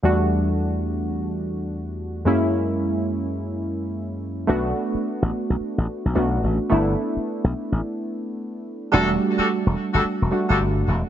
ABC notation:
X:1
M:4/4
L:1/16
Q:"Swing 16ths" 1/4=108
K:Em
V:1 name="Horn section"
z16 | z16 | z16 | z16 |
[DFGA] z2 [DFGA] z3 [DFGA] z3 [DFGA] z4 |]
V:2 name="Synth keys"
[E,,G,A,DF]16 | [F,,^G,^A,^CE]16 | [A,B,DF]12 [A,B,DF]4 | [A,B,DE]16 |
[G,A,DF]8- [G,A,DF]2 [G,A,DF]6 |]
V:3 name="Slap bass" clef=bass
z16 | z16 | B,,,2 z3 A,,, z B,,, z A,,, z B,,, B,,,2 A,,, z | G,,,2 z3 B,,, z A,,, z8 |
E,,,2 z3 E,,, z G,,, z E,,, z G,,, G,,,2 E,,, z |]